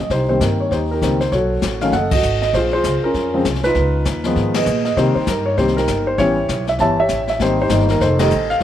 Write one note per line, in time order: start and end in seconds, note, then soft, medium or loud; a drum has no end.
0.01 0.12 D#5 medium
0.10 0.40 C2 medium
0.10 0.69 D#4 medium
0.10 0.69 G4 soft
0.10 0.28 C5 medium
0.10 brush sweep soft
0.10 kick soft
0.10 snare soft
0.29 0.69 D#3 medium
0.29 0.69 G3 medium
0.29 0.69 A#3 soft
0.29 0.69 C4 medium
0.29 0.41 C5 medium
0.40 0.70 G2 medium
0.40 0.60 A#4 medium
0.40 kick soft
0.40 snare medium
0.40 hi-hat pedal soft
0.60 0.72 C#5 medium
0.71 1.00 D#2 medium
0.71 0.92 D#4 medium
0.71 0.92 G4 medium
0.71 0.77 C5 medium
0.71 brush sweep soft
0.71 kick soft
0.71 snare soft
0.91 1.31 D#4 soft
0.91 1.31 G4 soft
0.91 1.19 A#4 medium
1.02 1.31 C#2 medium
1.02 1.19 D#3 medium
1.02 1.19 G3 soft
1.02 1.19 A#3 medium
1.02 1.19 C4 medium
1.02 kick soft
1.02 snare medium
1.02 hi-hat pedal soft
1.21 1.31 C5 medium
1.21 snare soft
1.32 1.61 B1 medium
1.32 1.90 F#4 medium
1.32 1.90 A4 medium
1.32 1.83 C#5 medium
1.32 brush sweep soft
1.32 kick soft
1.32 snare soft
1.62 1.91 A1 medium
1.62 kick soft
1.62 snare medium
1.62 hi-hat pedal soft
1.81 1.92 D#3 medium
1.81 1.92 F#3 soft
1.81 1.92 A3 soft
1.81 1.92 C#4 medium
1.81 1.93 F5 medium
1.81 snare soft
1.92 2.22 F#1 medium
1.92 2.13 A4 medium
1.92 2.11 D#5 medium
1.92 2.10 F#5 medium
1.92 brush sweep soft
1.92 kick soft
1.92 snare soft
2.11 2.52 F#4 soft
2.11 2.52 A4 medium
2.11 2.40 D#5 medium
2.11 kick medium
2.11 ride medium
2.23 2.52 G#1 medium
2.23 hi-hat pedal medium
2.42 2.54 D#5 medium
2.42 snare soft
2.53 2.83 A#1 medium
2.53 2.74 F4 medium
2.53 2.73 G#4 medium
2.53 2.72 C5 medium
2.53 brush sweep soft
2.53 kick soft
2.53 snare soft
2.73 3.04 F4 medium
2.73 3.30 G#4 medium
2.73 3.04 C5 medium
2.84 3.01 C#2 medium
2.84 kick soft
2.84 snare medium
2.84 hi-hat pedal medium
3.03 3.61 C#4 medium
3.03 3.61 F4 medium
3.03 3.42 A#4 medium
3.03 muted upright bass stroke soft
3.14 3.44 F2 medium
3.14 brush sweep soft
3.14 kick soft
3.14 snare soft
3.34 3.44 C#3 medium
3.34 3.44 F3 medium
3.34 3.44 G#3 medium
3.34 3.45 C4 medium
3.45 3.74 C2 medium
3.45 kick soft
3.45 snare medium
3.45 hi-hat pedal soft
3.55 snare soft
3.63 4.56 B4 medium
3.63 snare soft
3.65 4.52 D#4 medium
3.65 4.52 F4 medium
3.65 snare soft
3.75 4.04 C#2 medium
3.75 brush sweep soft
3.75 kick soft
3.75 snare soft
4.05 4.35 D#2 medium
4.05 kick soft
4.05 snare medium
4.05 hi-hat pedal medium
4.24 4.65 D#3 medium
4.24 4.65 F3 medium
4.24 4.65 G#3 medium
4.24 4.65 B3 medium
4.24 snare soft
4.36 4.65 G#2 medium
4.36 brush sweep soft
4.36 kick soft
4.36 snare soft
4.54 4.95 G#4 medium
4.54 4.95 B4 medium
4.54 4.83 D#5 medium
4.54 snare medium
4.54 ride medium
4.66 4.96 A#2 medium
4.66 hi-hat pedal medium
4.85 4.97 D#5 medium
4.85 snare soft
4.96 5.14 C3 medium
4.96 5.14 D#3 medium
4.96 5.14 G3 medium
4.96 5.14 A#3 medium
4.96 5.15 C4 medium
4.96 5.54 D#4 medium
4.96 5.54 G4 medium
4.96 5.14 C5 medium
4.96 brush sweep soft
4.96 kick soft
4.96 snare soft
5.15 5.27 C5 medium
5.15 muted upright bass stroke soft
5.27 5.56 G2 medium
5.27 5.45 A#4 medium
5.27 kick soft
5.27 snare medium
5.27 hi-hat pedal medium
5.46 5.58 C#5 medium
5.57 5.87 C2 medium
5.57 5.75 D#3 medium
5.57 5.75 G3 medium
5.57 5.75 A#3 medium
5.57 5.75 C4 medium
5.57 5.77 D#4 medium
5.57 5.77 G4 medium
5.57 5.77 C5 medium
5.57 brush sweep soft
5.57 kick soft
5.57 snare soft
5.68 snare soft
5.77 6.16 D#4 soft
5.77 6.17 G4 medium
5.77 6.05 A#4 medium
5.77 snare soft
5.87 6.17 G1 medium
5.87 kick soft
5.87 snare medium
5.87 hi-hat pedal soft
6.07 6.19 C5 medium
6.18 6.48 A1 medium
6.18 6.35 E3 medium
6.18 6.36 G3 medium
6.18 6.36 B3 soft
6.18 6.36 C#4 medium
6.18 6.76 E4 medium
6.18 6.76 G4 medium
6.18 6.64 C#5 medium
6.18 brush sweep medium
6.18 kick soft
6.18 snare soft
6.48 6.78 B1 medium
6.48 kick soft
6.48 snare medium
6.48 hi-hat pedal medium
6.67 6.74 E5 medium
6.67 snare soft
6.78 7.08 G1 medium
6.78 6.96 E3 medium
6.78 6.97 G3 soft
6.78 6.97 B3 medium
6.78 6.97 E4 medium
6.78 7.00 C#5 medium
6.78 6.98 E5 medium
6.78 6.99 A5 medium
6.78 brush sweep soft
6.78 kick soft
6.78 snare soft
7.00 7.38 G4 medium
7.00 7.39 C#5 medium
7.00 7.27 E5 loud
7.09 7.39 A1 medium
7.09 kick soft
7.09 snare medium
7.09 hi-hat pedal soft
7.28 7.40 E5 medium
7.28 snare soft
7.39 7.69 G#1 medium
7.39 7.57 D#3 medium
7.39 7.57 G3 medium
7.39 7.57 A#3 medium
7.39 7.58 C4 medium
7.39 7.58 C5 medium
7.39 brush sweep medium
7.39 kick soft
7.39 snare soft
7.44 7.61 D#4 medium
7.44 7.61 G4 medium
7.62 7.71 D#4 medium
7.62 7.99 G4 medium
7.62 7.91 C5 medium
7.69 7.99 G1 medium
7.69 8.01 D#3 medium
7.69 8.01 G3 medium
7.69 8.01 A#3 soft
7.69 8.01 D#4 medium
7.69 kick soft
7.69 snare medium
7.69 hi-hat pedal medium
7.80 snare soft
7.88 8.00 A#4 medium
7.88 snare soft
7.90 snare soft
8.00 8.30 F1 medium
8.00 8.20 D#4 medium
8.00 8.19 A4 medium
8.00 8.19 C5 medium
8.00 brush sweep soft
8.00 kick soft
8.00 snare soft
8.19 8.30 D#3 medium
8.19 8.30 G3 medium
8.19 8.30 A3 medium
8.19 8.30 D#4 medium
8.19 8.59 A4 medium
8.19 8.59 C5 medium
8.19 8.51 D#5 medium
8.19 snare medium
8.19 ride medium
8.31 8.60 A1 medium
8.31 hi-hat pedal soft
8.50 8.62 F5 medium
8.50 snare soft